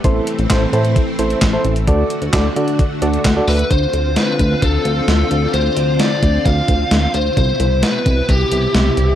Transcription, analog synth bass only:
X:1
M:4/4
L:1/16
Q:1/4=131
K:Dmix
V:1 name="Analog synth bass" clef=bass
A,,,2 z A,,, A,,,2 A,,3 z A,,,2 A,,,2 A,,,2 | D,,2 z D,, D,,2 D,3 z D,,2 D,,2 D,,2 | D,,2 D,,3 z D,,2 D,,2 D,,2 D,,2 D,,2 | D,,2 D,,3 z D,,2 D,,2 D,,2 D,,2 D,,2 |
C,,2 C,,3 z C,,2 C,,2 C,,2 C,,2 C,,2 |]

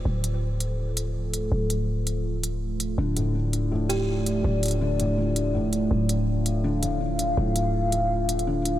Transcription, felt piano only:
X:1
M:4/4
L:1/8
Q:"Swing 16ths" 1/4=164
K:Dm
V:1 name="Felt piano" clef=bass
z8 | z8 | D, A,, D,2 A,, z3 | z2 D, A,, D,2 A,, z |
z4 D, A,, D,2 | A,, z4 z D, z |]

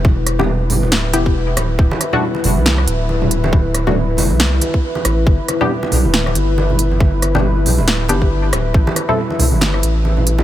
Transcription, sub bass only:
X:1
M:4/4
L:1/16
Q:"Swing 16ths" 1/4=138
K:Dmix
V:1 name="Sub bass" clef=bass
E,,,6 G,,, D,,,3 E,,,4 D,,,2 | D,,, z4 z F,,, C,,3 D,,,6- | D,,,6 F,,, C,,3 z4 A,,,2 | G,,, z4 z B,,, D,,,3 G,,,6- |
G,,,6 B,,, D,,,3 G,,,4 D,,,2 | A,,, z4 z C,, G,,,3 A,,,6 |]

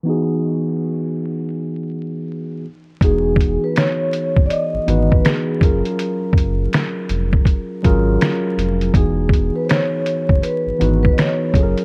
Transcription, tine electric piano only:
X:1
M:4/4
L:1/8
Q:"Swing 16ths" 1/4=81
K:E
V:1 name="Tine electric piano"
[E,B,DFG]6- [E,B,DFG] z | [E,B,DFG]3 z2 [E,B,DFB]2 [F,C^EG^A]- | [F,C^EG^A]2 z3 [F,CEGA]2 z | [E,B,DFG]3 z2 [E,B,DFB]2 [F,C^EGA^A] |]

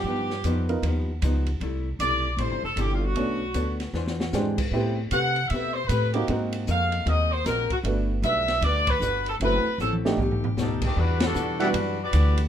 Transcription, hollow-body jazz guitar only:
X:1
M:4/4
L:1/8
Q:"Swing" 1/4=154
K:G
V:1 name="Hollow-body jazz guitar"
[G,,=F,B,^D] z [G,,F,B,D] z [G,,F,B,D] z [G,,F,B,D] z | [C,G,A,E] z [C,G,A,E] z [C,G,A,E] z [C,G,A,E] z | [B,DA^c] z [B,DAc] z [E,D^G^B] z [E,DGB] z | [A,CGB] z [A,CGB] z [A,CGB] z [A,CGB] z |
[_A,C_G_B] z [A,CGB] z [A,CGB] z [A,CGB] z | [G,DFB] z [G,DFB] z [G,DFB] z [G,DFB] z | [F,CEA] z [F,CEA] z [B,,A,^DG] z [B,,A,DG] z | [K:Em] [E,G,DF] z [E,G,DF] z [E,G,DF] z [E,G,DF] z |]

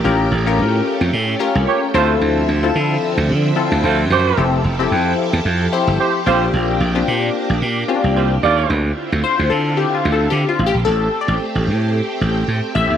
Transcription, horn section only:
X:1
M:4/4
L:1/16
Q:"Swing 16ths" 1/4=111
K:Dm
V:1 name="Horn section"
z12 [B,G^c] z [A,F=c]2 | z12 [A,Fc] z [A,Gc]2- | [A,Gc] z8 z3 [A,Gc] z [G,Fc]2 | z12 [G,Fc] z [A,Fd]2- |
[A,Fd] z12 z3 | z16 |]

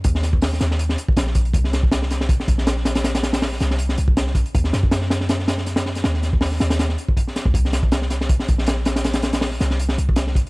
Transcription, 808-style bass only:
X:1
M:4/4
L:1/16
Q:"Swing 16ths" 1/4=160
K:Bb
V:1 name="808-style bass" clef=bass
E,,6 E,,4 z2 B,,,4 | C,,8- C,, z B,,,6- | B,,,6 C,,4 C,,4- C,, z | E,,2 _G,,12- G,,2 |
E,,6 E,,4 z4 z _D,, | C,,8- C,, z B,,,6- | B,,,6 C,,4 C,,4- C,, z |]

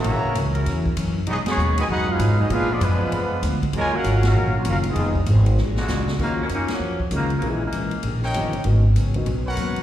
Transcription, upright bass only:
X:1
M:4/4
L:1/8
Q:"Swing" 1/4=196
K:Ebm
V:1 name="Upright bass" clef=bass
B,,, z D,,2 _F,,2 G,,2 | =B,,, z ^D,,2 ^F,,2 ^G,,2 | B,,2 G,,2 F,,2 =D,,2 | E,,2 A,,,2 B,,,2 G,,,2 |
F,,,2 A,,,2 B,,,2 ^C,,2 | E,,2 G,,2 F,,2 D,,2 | B,,,2 C,,2 B,,,2 =G,,,2 | A,,,2 D,,2 C,,2 E,, z |]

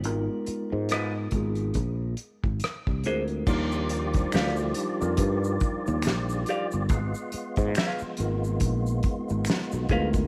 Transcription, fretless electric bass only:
X:1
M:4/4
L:1/16
Q:"Swing 16ths" 1/4=70
K:Eb
V:1 name="Fretless electric bass" clef=bass
A,,, z2 A,,3 A,,,2 B,,,2 z A,,, z C,, D,,2 | E,,4 D,,2 z F,, G,,2 z E,, B,,,2 z G,,, | A,,, z2 A,, z2 A,,,2 B,,,2 z A,,, z _C,, D,,2 |]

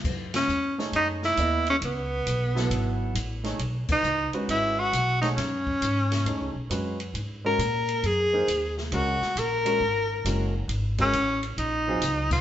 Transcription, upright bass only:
X:1
M:4/4
L:1/8
Q:"Swing" 1/4=135
K:G#phr
V:1 name="Upright bass" clef=bass
F,,2 E,,2 F,,2 D,,2 | C,,2 B,,,2 G,,,2 A,,,2 | B,,, z C,, z G,,,2 B,,,2 | F,,2 G,,2 (3E,, C,, B,,, F,,2 |
G,,2 ^A,,2 F,,2 D,,2 | C,, z ^A,,,2 G,,,2 F,,,2 | G,,,2 A,,,2 ^A,,,2 C,,2 |]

